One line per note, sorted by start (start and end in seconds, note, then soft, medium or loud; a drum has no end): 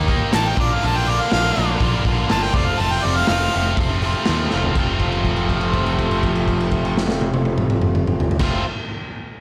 0.00 0.20 D#2 medium
0.08 0.31 D#3 medium
0.08 0.31 A#3 medium
0.08 0.32 D#4 medium
0.08 0.33 G4 medium
0.08 kick medium
0.08 open hi-hat medium
0.32 0.52 A1 medium
0.32 0.56 D#3 medium
0.32 0.56 A#3 medium
0.32 0.56 D#4 loud
0.32 0.57 G4 loud
0.32 0.50 A5 loud
0.32 snare loud
0.32 clap medium
0.32 open hi-hat medium
0.48 0.58 G5 medium
0.57 0.75 A#1 medium
0.57 0.80 A#2 medium
0.57 0.81 D3 medium
0.57 0.83 A#3 loud
0.57 0.83 D4 loud
0.57 0.85 F4 medium
0.57 0.75 D5 medium
0.57 kick loud
0.57 open hi-hat soft
0.74 0.88 F5 medium
0.81 1.20 A#1 medium
0.81 1.05 A#2 medium
0.81 1.06 D3 medium
0.81 1.07 A#3 medium
0.81 1.08 D4 loud
0.81 1.09 F4 loud
0.81 open hi-hat medium
0.87 0.99 A5 medium
0.97 1.11 G5 medium
1.06 1.30 A#2 medium
1.06 1.31 D3 medium
1.06 1.31 A#3 medium
1.06 1.33 D4 medium
1.06 1.34 F4 medium
1.06 1.23 D5 loud
1.06 open hi-hat medium
1.21 1.32 F5 medium
1.31 1.51 A#1 medium
1.31 1.54 A#2 medium
1.31 1.55 D3 loud
1.31 1.56 A#3 medium
1.31 1.57 D4 loud
1.31 1.58 F4 loud
1.31 1.80 F5 loud
1.31 snare loud
1.31 open hi-hat medium
1.55 1.75 A#1 medium
1.55 1.78 A#2 medium
1.55 1.79 D3 medium
1.55 1.80 A#3 medium
1.55 1.81 D4 medium
1.55 1.82 F4 medium
1.55 open hi-hat medium
1.80 1.99 A#1 medium
1.80 2.04 A#2 medium
1.80 2.05 D3 medium
1.80 2.06 A#3 medium
1.80 2.06 D4 loud
1.80 2.08 F4 loud
1.80 kick loud
1.80 open hi-hat medium
2.05 2.23 A#1 medium
2.05 2.27 A#2 medium
2.05 2.29 D3 medium
2.05 2.29 A#3 medium
2.05 2.30 D4 medium
2.05 2.31 F4 medium
2.05 kick medium
2.05 open hi-hat medium
2.28 2.49 G1 medium
2.28 2.52 A#2 medium
2.28 2.53 D3 medium
2.28 2.53 A#3 loud
2.28 2.54 D4 loud
2.28 2.57 F4 loud
2.28 2.44 A5 loud
2.28 snare loud
2.28 open hi-hat medium
2.43 2.57 G5 medium
2.54 2.72 F1 medium
2.54 2.78 F2 medium
2.54 2.79 C3 medium
2.54 2.80 F3 medium
2.54 2.80 A3 loud
2.54 2.81 C4 loud
2.54 2.69 D5 medium
2.54 kick loud
2.54 open hi-hat medium
2.58 2.82 F4 loud
2.67 2.81 F5 medium
2.78 2.98 F1 medium
2.78 3.03 F2 medium
2.78 3.04 C3 medium
2.78 3.04 F3 medium
2.78 3.05 A3 medium
2.78 2.94 A5 loud
2.78 open hi-hat medium
2.82 3.06 C4 medium
2.82 3.07 F4 loud
2.92 3.06 G5 medium
3.03 3.22 F1 medium
3.03 3.26 F2 medium
3.03 3.27 C3 medium
3.03 3.28 F3 medium
3.03 3.29 A3 medium
3.03 3.18 D5 medium
3.03 open hi-hat medium
3.07 3.29 C4 medium
3.07 3.31 F4 medium
3.16 3.28 F5 loud
3.27 3.47 F1 medium
3.27 3.53 F2 medium
3.27 3.53 C3 medium
3.27 3.55 F3 medium
3.27 3.55 A3 medium
3.27 3.56 C4 loud
3.27 3.76 F5 loud
3.27 snare loud
3.27 open hi-hat medium
3.32 3.57 F4 medium
3.52 3.73 F1 medium
3.52 3.76 F2 medium
3.52 3.77 C3 medium
3.52 3.78 F3 medium
3.52 3.78 A3 medium
3.52 open hi-hat medium
3.57 3.79 C4 medium
3.57 3.80 F4 medium
3.77 4.14 F1 medium
3.77 4.00 F2 medium
3.77 4.01 C3 medium
3.77 4.01 F3 medium
3.77 4.03 A3 loud
3.77 4.04 C4 loud
3.77 kick loud
3.77 open hi-hat medium
3.81 4.05 F4 loud
4.01 4.25 F2 medium
4.01 4.26 C3 medium
4.01 4.27 F3 medium
4.01 4.27 A3 medium
4.01 4.28 C4 medium
4.01 open hi-hat medium
4.06 4.29 F4 medium
4.25 4.46 D#2 medium
4.25 4.49 F2 medium
4.25 4.50 C3 medium
4.25 4.51 F3 medium
4.25 4.52 A3 loud
4.25 snare loud
4.25 open hi-hat medium
4.29 4.52 C4 loud
4.29 4.53 F4 loud
4.50 4.71 F1 medium
4.50 4.74 F2 medium
4.50 4.75 C3 medium
4.50 4.75 F3 medium
4.50 4.75 A3 medium
4.50 4.76 C4 medium
4.50 snare medium
4.54 4.76 F4 medium
4.62 floor tom medium
4.75 8.30 F1 medium
4.75 8.34 F2 medium
4.75 8.35 C3 medium
4.75 8.35 F3 medium
4.75 8.36 A3 medium
4.75 8.36 C4 medium
4.75 kick loud
4.75 crash medium
4.79 8.36 F4 loud
4.99 kick medium
4.99 crash soft
5.12 crash soft
5.25 kick medium
5.25 crash soft
5.36 crash soft
5.49 kick medium
5.49 crash soft
5.61 crash soft
5.73 kick medium
5.73 crash soft
5.86 crash soft
5.99 kick medium
5.99 crash soft
6.11 crash soft
6.23 kick medium
6.23 crash soft
6.35 crash soft
6.48 kick medium
6.48 crash soft
6.60 crash soft
6.71 kick medium
6.71 crash medium
6.85 crash medium
6.97 snare medium
7.09 snare medium
7.21 high tom medium
7.34 high tom medium
7.45 high tom medium
7.58 mid tom medium
7.70 mid tom medium
7.82 mid tom loud
7.95 mid tom loud
8.07 mid tom medium
8.20 floor tom loud
8.31 floor tom loud
8.39 8.61 F1 medium
8.39 8.62 F2 medium
8.39 8.63 C3 medium
8.39 8.63 F3 medium
8.39 8.63 A3 loud
8.39 kick loud
8.39 snare medium
8.39 crash loud
8.43 8.64 C4 medium
8.43 8.64 F4 loud